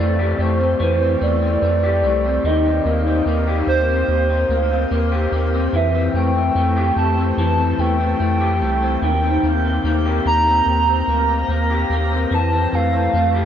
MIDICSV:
0, 0, Header, 1, 4, 480
1, 0, Start_track
1, 0, Key_signature, -1, "major"
1, 0, Tempo, 821918
1, 1430, Time_signature, 4, 2, 24, 8
1, 7855, End_track
2, 0, Start_track
2, 0, Title_t, "Soft synth lead"
2, 0, Program_c, 0, 80
2, 0, Note_on_c, 0, 74, 111
2, 239, Note_on_c, 0, 72, 93
2, 248, Note_off_c, 0, 74, 0
2, 474, Note_off_c, 0, 72, 0
2, 479, Note_on_c, 0, 72, 93
2, 718, Note_on_c, 0, 74, 93
2, 726, Note_off_c, 0, 72, 0
2, 1435, Note_on_c, 0, 75, 93
2, 1444, Note_off_c, 0, 74, 0
2, 1912, Note_off_c, 0, 75, 0
2, 2147, Note_on_c, 0, 72, 127
2, 2845, Note_off_c, 0, 72, 0
2, 3358, Note_on_c, 0, 76, 95
2, 3577, Note_off_c, 0, 76, 0
2, 3595, Note_on_c, 0, 79, 116
2, 4049, Note_off_c, 0, 79, 0
2, 4073, Note_on_c, 0, 81, 112
2, 4295, Note_off_c, 0, 81, 0
2, 4313, Note_on_c, 0, 81, 101
2, 4553, Note_on_c, 0, 79, 108
2, 4562, Note_off_c, 0, 81, 0
2, 5272, Note_off_c, 0, 79, 0
2, 5280, Note_on_c, 0, 79, 95
2, 5731, Note_off_c, 0, 79, 0
2, 5995, Note_on_c, 0, 82, 127
2, 6689, Note_off_c, 0, 82, 0
2, 7204, Note_on_c, 0, 81, 111
2, 7445, Note_on_c, 0, 77, 120
2, 7453, Note_off_c, 0, 81, 0
2, 7855, Note_off_c, 0, 77, 0
2, 7855, End_track
3, 0, Start_track
3, 0, Title_t, "Clean electric guitar"
3, 0, Program_c, 1, 27
3, 0, Note_on_c, 1, 52, 84
3, 0, Note_on_c, 1, 57, 75
3, 0, Note_on_c, 1, 60, 58
3, 112, Note_on_c, 1, 67, 64
3, 225, Note_off_c, 1, 57, 0
3, 232, Note_on_c, 1, 57, 59
3, 348, Note_off_c, 1, 60, 0
3, 351, Note_on_c, 1, 60, 57
3, 460, Note_off_c, 1, 52, 0
3, 467, Note_on_c, 1, 52, 84
3, 586, Note_off_c, 1, 60, 0
3, 589, Note_on_c, 1, 60, 61
3, 702, Note_off_c, 1, 57, 0
3, 710, Note_on_c, 1, 57, 69
3, 828, Note_off_c, 1, 60, 0
3, 830, Note_on_c, 1, 60, 55
3, 943, Note_off_c, 1, 57, 0
3, 950, Note_on_c, 1, 57, 65
3, 1069, Note_off_c, 1, 67, 0
3, 1071, Note_on_c, 1, 67, 70
3, 1182, Note_off_c, 1, 57, 0
3, 1189, Note_on_c, 1, 57, 60
3, 1309, Note_off_c, 1, 60, 0
3, 1312, Note_on_c, 1, 60, 62
3, 1428, Note_off_c, 1, 52, 0
3, 1432, Note_on_c, 1, 51, 87
3, 1477, Note_off_c, 1, 57, 0
3, 1549, Note_off_c, 1, 60, 0
3, 1551, Note_on_c, 1, 60, 63
3, 1669, Note_on_c, 1, 58, 59
3, 1789, Note_off_c, 1, 60, 0
3, 1791, Note_on_c, 1, 60, 62
3, 1902, Note_off_c, 1, 58, 0
3, 1909, Note_on_c, 1, 58, 71
3, 2027, Note_off_c, 1, 67, 0
3, 2029, Note_on_c, 1, 67, 66
3, 2141, Note_off_c, 1, 58, 0
3, 2148, Note_on_c, 1, 58, 54
3, 2267, Note_off_c, 1, 60, 0
3, 2269, Note_on_c, 1, 60, 53
3, 2391, Note_off_c, 1, 51, 0
3, 2506, Note_off_c, 1, 60, 0
3, 2509, Note_on_c, 1, 60, 58
3, 2624, Note_off_c, 1, 58, 0
3, 2631, Note_on_c, 1, 58, 69
3, 2746, Note_off_c, 1, 60, 0
3, 2749, Note_on_c, 1, 60, 61
3, 2865, Note_off_c, 1, 58, 0
3, 2872, Note_on_c, 1, 58, 71
3, 2987, Note_off_c, 1, 67, 0
3, 2990, Note_on_c, 1, 67, 67
3, 3105, Note_off_c, 1, 58, 0
3, 3112, Note_on_c, 1, 58, 67
3, 3232, Note_off_c, 1, 60, 0
3, 3234, Note_on_c, 1, 60, 68
3, 3352, Note_on_c, 1, 52, 82
3, 3399, Note_off_c, 1, 58, 0
3, 3471, Note_off_c, 1, 60, 0
3, 3473, Note_on_c, 1, 60, 70
3, 3595, Note_on_c, 1, 57, 55
3, 3613, Note_off_c, 1, 67, 0
3, 3709, Note_off_c, 1, 60, 0
3, 3712, Note_on_c, 1, 60, 56
3, 3823, Note_off_c, 1, 57, 0
3, 3830, Note_on_c, 1, 57, 81
3, 3951, Note_on_c, 1, 67, 72
3, 4064, Note_off_c, 1, 57, 0
3, 4071, Note_on_c, 1, 57, 56
3, 4188, Note_off_c, 1, 60, 0
3, 4190, Note_on_c, 1, 60, 60
3, 4305, Note_off_c, 1, 52, 0
3, 4312, Note_on_c, 1, 52, 89
3, 4426, Note_off_c, 1, 60, 0
3, 4429, Note_on_c, 1, 60, 60
3, 4543, Note_off_c, 1, 57, 0
3, 4550, Note_on_c, 1, 57, 71
3, 4669, Note_off_c, 1, 60, 0
3, 4671, Note_on_c, 1, 60, 62
3, 4782, Note_off_c, 1, 57, 0
3, 4789, Note_on_c, 1, 57, 68
3, 4905, Note_off_c, 1, 67, 0
3, 4907, Note_on_c, 1, 67, 69
3, 5026, Note_off_c, 1, 57, 0
3, 5033, Note_on_c, 1, 57, 65
3, 5149, Note_off_c, 1, 60, 0
3, 5151, Note_on_c, 1, 60, 64
3, 5268, Note_off_c, 1, 52, 0
3, 5270, Note_on_c, 1, 51, 83
3, 5320, Note_off_c, 1, 57, 0
3, 5386, Note_off_c, 1, 60, 0
3, 5389, Note_on_c, 1, 60, 63
3, 5510, Note_on_c, 1, 58, 61
3, 5632, Note_off_c, 1, 60, 0
3, 5634, Note_on_c, 1, 60, 58
3, 5745, Note_off_c, 1, 58, 0
3, 5752, Note_on_c, 1, 58, 71
3, 5871, Note_off_c, 1, 67, 0
3, 5873, Note_on_c, 1, 67, 68
3, 5986, Note_off_c, 1, 58, 0
3, 5993, Note_on_c, 1, 58, 54
3, 6110, Note_off_c, 1, 60, 0
3, 6112, Note_on_c, 1, 60, 52
3, 6230, Note_off_c, 1, 51, 0
3, 6351, Note_off_c, 1, 60, 0
3, 6354, Note_on_c, 1, 60, 62
3, 6468, Note_off_c, 1, 58, 0
3, 6475, Note_on_c, 1, 58, 64
3, 6590, Note_off_c, 1, 60, 0
3, 6592, Note_on_c, 1, 60, 52
3, 6707, Note_off_c, 1, 58, 0
3, 6714, Note_on_c, 1, 58, 63
3, 6832, Note_off_c, 1, 67, 0
3, 6834, Note_on_c, 1, 67, 65
3, 6946, Note_off_c, 1, 58, 0
3, 6953, Note_on_c, 1, 58, 66
3, 7071, Note_off_c, 1, 60, 0
3, 7074, Note_on_c, 1, 60, 67
3, 7193, Note_on_c, 1, 52, 72
3, 7240, Note_off_c, 1, 58, 0
3, 7314, Note_off_c, 1, 60, 0
3, 7316, Note_on_c, 1, 60, 66
3, 7437, Note_on_c, 1, 57, 57
3, 7455, Note_off_c, 1, 67, 0
3, 7551, Note_off_c, 1, 60, 0
3, 7553, Note_on_c, 1, 60, 52
3, 7669, Note_off_c, 1, 57, 0
3, 7676, Note_on_c, 1, 57, 69
3, 7794, Note_on_c, 1, 67, 73
3, 7855, Note_off_c, 1, 52, 0
3, 7855, Note_off_c, 1, 57, 0
3, 7855, Note_off_c, 1, 60, 0
3, 7855, Note_off_c, 1, 67, 0
3, 7855, End_track
4, 0, Start_track
4, 0, Title_t, "Analog synth bass"
4, 0, Program_c, 2, 38
4, 0, Note_on_c, 2, 41, 104
4, 201, Note_off_c, 2, 41, 0
4, 226, Note_on_c, 2, 41, 99
4, 439, Note_off_c, 2, 41, 0
4, 467, Note_on_c, 2, 41, 93
4, 679, Note_off_c, 2, 41, 0
4, 708, Note_on_c, 2, 40, 88
4, 920, Note_off_c, 2, 40, 0
4, 946, Note_on_c, 2, 41, 99
4, 1184, Note_on_c, 2, 36, 94
4, 1193, Note_off_c, 2, 41, 0
4, 1398, Note_off_c, 2, 36, 0
4, 1425, Note_on_c, 2, 39, 97
4, 1638, Note_off_c, 2, 39, 0
4, 1665, Note_on_c, 2, 39, 95
4, 1878, Note_off_c, 2, 39, 0
4, 1903, Note_on_c, 2, 39, 101
4, 2117, Note_off_c, 2, 39, 0
4, 2143, Note_on_c, 2, 39, 100
4, 2357, Note_off_c, 2, 39, 0
4, 2385, Note_on_c, 2, 39, 114
4, 2598, Note_off_c, 2, 39, 0
4, 2623, Note_on_c, 2, 38, 89
4, 2837, Note_off_c, 2, 38, 0
4, 2868, Note_on_c, 2, 39, 107
4, 3080, Note_off_c, 2, 39, 0
4, 3106, Note_on_c, 2, 39, 89
4, 3319, Note_off_c, 2, 39, 0
4, 3346, Note_on_c, 2, 41, 106
4, 3559, Note_off_c, 2, 41, 0
4, 3585, Note_on_c, 2, 41, 93
4, 3798, Note_off_c, 2, 41, 0
4, 3826, Note_on_c, 2, 41, 117
4, 4039, Note_off_c, 2, 41, 0
4, 4066, Note_on_c, 2, 41, 97
4, 4279, Note_off_c, 2, 41, 0
4, 4306, Note_on_c, 2, 41, 112
4, 4519, Note_off_c, 2, 41, 0
4, 4546, Note_on_c, 2, 40, 88
4, 4759, Note_off_c, 2, 40, 0
4, 4788, Note_on_c, 2, 41, 94
4, 5029, Note_on_c, 2, 36, 88
4, 5038, Note_off_c, 2, 41, 0
4, 5241, Note_off_c, 2, 36, 0
4, 5268, Note_on_c, 2, 39, 102
4, 5480, Note_off_c, 2, 39, 0
4, 5508, Note_on_c, 2, 39, 94
4, 5720, Note_off_c, 2, 39, 0
4, 5746, Note_on_c, 2, 39, 95
4, 5959, Note_off_c, 2, 39, 0
4, 5989, Note_on_c, 2, 39, 103
4, 6200, Note_off_c, 2, 39, 0
4, 6227, Note_on_c, 2, 39, 103
4, 6439, Note_off_c, 2, 39, 0
4, 6468, Note_on_c, 2, 38, 73
4, 6680, Note_off_c, 2, 38, 0
4, 6707, Note_on_c, 2, 39, 99
4, 6919, Note_off_c, 2, 39, 0
4, 6948, Note_on_c, 2, 39, 92
4, 7160, Note_off_c, 2, 39, 0
4, 7189, Note_on_c, 2, 41, 115
4, 7401, Note_off_c, 2, 41, 0
4, 7433, Note_on_c, 2, 41, 81
4, 7643, Note_off_c, 2, 41, 0
4, 7671, Note_on_c, 2, 41, 116
4, 7855, Note_off_c, 2, 41, 0
4, 7855, End_track
0, 0, End_of_file